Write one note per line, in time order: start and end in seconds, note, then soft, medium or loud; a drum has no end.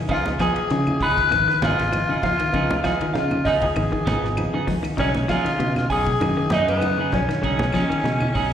0.08 0.33 C#2 medium
0.08 0.28 C#3 loud
0.08 0.29 F3 medium
0.08 0.31 F3 medium
0.08 0.31 B3 medium
0.08 0.29 B3 medium
0.08 0.31 D#4 medium
0.08 0.29 D#4 medium
0.08 0.29 G#4 medium
0.08 0.19 F5 medium
0.08 kick loud
0.08 ride bell medium
0.13 0.26 F4 loud
0.26 snare soft
0.26 high conga medium
0.39 0.59 F3 medium
0.39 0.50 F3 loud
0.39 0.59 B3 medium
0.39 0.59 D#4 medium
0.39 0.60 G#4 medium
0.39 0.98 G#4 loud
0.39 0.98 G#5 medium
0.39 kick medium
0.39 snare medium
0.39 ride bell medium
0.39 claves medium
0.56 ride bell medium
0.70 0.95 C#3 loud
0.70 0.89 C#3 loud
0.70 0.93 F3 medium
0.70 0.93 B3 medium
0.70 0.93 D#4 medium
0.70 snare soft
0.70 ride bell soft
0.70 high conga soft
0.87 high conga medium
0.87 claves medium
1.00 1.25 C#2 medium
1.00 1.21 F3 medium
1.00 1.21 B3 medium
1.00 1.21 D#4 medium
1.00 1.21 G#4 medium
1.00 1.65 B4 loud
1.00 1.59 B5 medium
1.00 kick medium
1.00 open hi-hat medium
1.00 low conga medium
1.17 kick medium
1.17 snare soft
1.17 ride bell medium
1.17 high conga medium
1.30 1.45 G#1 loud
1.30 1.42 D#3 medium
1.30 1.53 F3 medium
1.30 1.53 B3 medium
1.30 1.53 D#4 medium
1.30 snare soft
1.30 ride bell medium
1.30 claves medium
1.48 1.66 D#3 medium
1.48 snare soft
1.62 1.76 G#1 loud
1.62 1.82 F3 medium
1.62 1.82 B3 medium
1.62 1.83 D#4 medium
1.62 2.24 F4 loud
1.62 1.83 G#4 medium
1.62 2.22 F5 medium
1.62 snare medium
1.62 ride bell soft
1.62 high conga loud
1.62 low conga medium
1.79 2.03 G#1 medium
1.79 snare soft
1.79 ride bell medium
1.92 2.15 F3 medium
1.92 2.15 B3 medium
1.92 2.15 D#4 medium
1.92 ride bell medium
1.92 high conga medium
1.92 claves medium
2.09 2.18 C#3 medium
2.09 2.28 D#4 soft
2.09 2.27 G#4 soft
2.09 muted clean electric guitar stroke soft
2.23 2.36 C#2 loud
2.23 2.34 F3 medium
2.23 2.82 F4 loud
2.23 2.81 F5 medium
2.23 kick medium
2.23 snare soft
2.23 ride bell medium
2.23 low conga loud
2.39 2.49 D#3 medium
2.39 ride bell medium
2.39 high conga soft
2.39 claves medium
2.52 2.78 C#2 medium
2.52 2.73 C#3 medium
2.52 2.75 F3 medium
2.52 2.73 F3 medium
2.52 2.75 B3 medium
2.52 2.74 B3 medium
2.52 2.75 D#4 loud
2.52 2.74 D#4 medium
2.52 2.74 G#4 medium
2.52 kick loud
2.52 ride bell medium
2.71 high conga loud
2.84 3.04 F3 medium
2.84 2.94 F3 medium
2.84 3.04 B3 medium
2.84 3.04 D#4 medium
2.84 3.14 F4 medium
2.84 3.04 G#4 medium
2.84 3.12 F5 medium
2.84 kick medium
2.84 snare medium
2.84 ride bell medium
2.84 claves medium
3.01 3.10 D#3 medium
3.01 ride bell medium
3.14 3.39 C#3 loud
3.14 3.34 C#3 medium
3.14 3.37 F3 medium
3.14 3.37 B3 medium
3.14 3.37 D#4 medium
3.14 3.45 F4 medium
3.14 3.43 F5 medium
3.14 snare soft
3.14 ride bell soft
3.14 high conga soft
3.31 high conga loud
3.31 claves medium
3.45 3.70 C#2 medium
3.45 3.65 F3 medium
3.45 3.65 B3 medium
3.45 3.65 D#4 medium
3.45 3.54 D#4 medium
3.45 3.66 G#4 medium
3.45 3.50 D#5 medium
3.45 kick medium
3.45 snare soft
3.45 open hi-hat medium
3.45 high conga medium
3.45 low conga medium
3.62 4.65 G#4 medium
3.62 4.65 G#5 medium
3.62 kick medium
3.62 ride bell medium
3.62 high conga medium
3.76 3.89 G#1 loud
3.76 3.87 D#3 medium
3.76 3.99 F3 medium
3.76 3.99 B3 medium
3.76 3.99 D#4 medium
3.76 ride bell medium
3.76 high conga soft
3.76 low conga medium
3.76 claves medium
3.92 4.11 D#3 medium
3.92 kick medium
4.05 4.20 G#1 loud
4.05 4.26 F3 medium
4.05 4.26 B3 medium
4.05 4.26 D#4 medium
4.05 4.26 G#4 medium
4.05 snare medium
4.05 ride bell medium
4.05 high conga loud
4.05 low conga medium
4.22 4.47 G#1 loud
4.22 snare soft
4.37 4.59 F3 medium
4.37 4.60 B3 medium
4.37 4.60 D#4 loud
4.37 ride bell medium
4.37 high conga medium
4.37 claves medium
4.54 4.63 C#3 medium
4.54 4.72 B3 medium
4.54 4.72 D#4 medium
4.54 4.71 G#4 medium
4.67 4.81 C#2 medium
4.67 4.78 F3 medium
4.67 kick medium
4.67 snare soft
4.67 open hi-hat medium
4.67 low conga medium
4.83 4.92 D#3 medium
4.83 ride bell medium
4.83 high conga soft
4.83 claves medium
4.97 5.23 B1 loud
4.97 5.16 C#3 medium
4.97 5.19 F#3 medium
4.97 5.20 G#3 medium
4.97 5.20 C#4 medium
4.97 5.13 C#4 loud
4.97 5.19 C#4 medium
4.97 5.20 D#4 loud
4.97 5.19 D#4 medium
4.97 5.19 G#4 medium
4.97 5.08 C#5 medium
4.97 kick loud
4.97 ride bell medium
5.15 snare soft
5.15 high conga medium
5.28 5.39 F3 medium
5.28 5.49 F#3 medium
5.28 5.49 C#4 medium
5.28 5.49 D#4 medium
5.28 5.87 F4 loud
5.28 5.50 G#4 medium
5.28 5.87 F5 medium
5.28 kick medium
5.28 snare medium
5.28 ride bell medium
5.28 claves medium
5.45 5.54 D#3 medium
5.45 snare soft
5.45 ride bell medium
5.59 5.84 B2 loud
5.59 5.78 C#3 medium
5.59 5.82 G#3 medium
5.59 5.82 C#4 medium
5.59 5.82 D#4 medium
5.59 ride bell medium
5.59 high conga soft
5.76 snare soft
5.76 high conga medium
5.76 claves medium
5.90 6.14 B1 medium
5.90 6.10 C#4 medium
5.90 6.11 D#4 medium
5.90 6.11 G#4 medium
5.90 6.54 G#4 loud
5.90 6.48 G#5 loud
5.90 kick medium
5.90 open hi-hat medium
5.90 low conga medium
6.06 kick medium
6.06 ride bell medium
6.06 high conga medium
6.20 6.34 F#2 loud
6.20 6.32 D#3 loud
6.20 6.43 G#3 medium
6.20 6.43 C#4 medium
6.20 6.43 D#4 medium
6.20 ride bell medium
6.20 high conga soft
6.20 low conga medium
6.20 claves medium
6.37 6.56 D#3 medium
6.50 6.64 F#2 loud
6.50 6.71 F#3 medium
6.50 6.72 C#4 medium
6.50 6.68 D#4 loud
6.50 6.72 D#4 medium
6.50 6.72 G#4 medium
6.50 6.70 D#5 medium
6.50 snare medium
6.50 ride bell medium
6.50 high conga loud
6.50 low conga medium
6.68 6.93 F#2 loud
6.68 7.10 B3 loud
6.68 7.10 B4 medium
6.68 ride bell medium
6.80 7.04 G#3 medium
6.80 7.03 C#4 medium
6.80 7.03 D#4 medium
6.80 ride bell medium
6.80 high conga medium
6.80 claves medium
6.98 7.07 C#3 medium
6.98 7.17 C#4 soft
6.98 7.17 D#4 soft
6.98 7.17 G#4 medium
7.12 7.26 B1 loud
7.12 7.23 F3 medium
7.12 8.53 C#4 loud
7.12 8.53 C#5 medium
7.12 kick medium
7.12 snare soft
7.12 ride bell medium
7.12 low conga loud
7.29 7.38 D#3 medium
7.29 snare soft
7.29 ride bell medium
7.29 high conga soft
7.29 claves medium
7.42 7.68 B1 loud
7.42 7.61 C#3 medium
7.42 7.63 F#3 medium
7.42 7.65 G#3 medium
7.42 7.65 C#4 medium
7.42 7.63 C#4 medium
7.42 7.65 D#4 medium
7.42 7.63 D#4 medium
7.42 7.64 G#4 medium
7.42 kick loud
7.42 ride bell soft
7.59 snare soft
7.59 high conga loud
7.73 7.84 F3 medium
7.73 7.93 F#3 medium
7.73 7.94 C#4 medium
7.73 7.94 D#4 medium
7.73 7.94 G#4 medium
7.73 kick medium
7.73 snare medium
7.73 ride bell medium
7.73 claves medium
7.90 7.99 D#3 medium
7.90 ride bell medium
8.04 8.28 B2 loud
8.04 8.23 C#3 medium
8.04 8.26 G#3 loud
8.04 8.26 C#4 medium
8.04 8.26 D#4 loud
8.04 snare soft
8.04 ride bell medium
8.04 high conga soft
8.21 high conga medium
8.21 claves medium
8.34 8.53 B1 medium
8.34 8.53 F#3 medium
8.34 8.53 C#4 medium
8.34 8.53 D#4 medium
8.34 8.53 G#4 medium
8.34 kick medium
8.34 open hi-hat medium
8.34 low conga medium